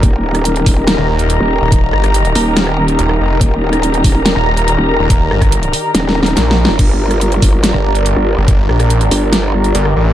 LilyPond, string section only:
\new Staff \with { instrumentName = "String section" } { \time 4/4 \key ees \lydian \tempo 4 = 142 << { bes''1~ | bes''1 | bes''1~ | bes''1 |
r1 | r1 | } \\ { <ees ees' g' bes'>1~ | <ees ees' g' bes'>1~ | <ees ees' g' bes'>1~ | <ees ees' g' bes'>1 |
<d' g'>1~ | <d' g'>1 | } >> }